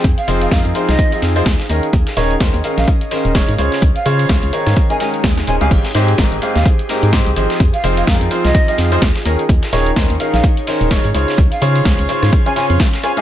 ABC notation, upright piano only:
X:1
M:4/4
L:1/16
Q:"Swing 16ths" 1/4=127
K:Ab
V:1 name="Upright piano"
z2 [F,CEFAc]2 z2 [F,CEFAc]3 [F,CEFAe]2 [F,CEFAc] z2 [E,DEABe] z | z2 [E,DEABd] z [E,DEABc] z [E,DEABf]2 z2 [E,DEABc]2 [D,DEABd] z [D,DFAcd]2 | z2 [D,DFAcd]2 [D,F]2 [E,DEABd]3 [E,DEABe] [E,DEABe]2 z2 [DEABc] [A,,CEGAf]- | [A,,CEGAf] z [A,,CEGAc] z [A,,CEGAB] z [A,,CEGAf]2 z2 [A,,CEGAB]2 [A,,CEGAc] z [F,CEGAc]2 |
z2 [F,CEFAc]2 [F,EAB]2 [F,CEFAc]3 [F,CEFAe]2 [F,CEFAc] z2 [E,DEABe] z | z2 [E,DEABd] z [DEABc] z [E,DEABf]2 z2 [E,DEABc]2 [D,DEABd] z [D,DFAcd]2 | z2 [D,DFAcd]2 [D,DFc]2 [D,DFAcd]3 [D,DFAcd] [D,DFAcd]2 z2 [DFAcd] [A,,CEGAf] |]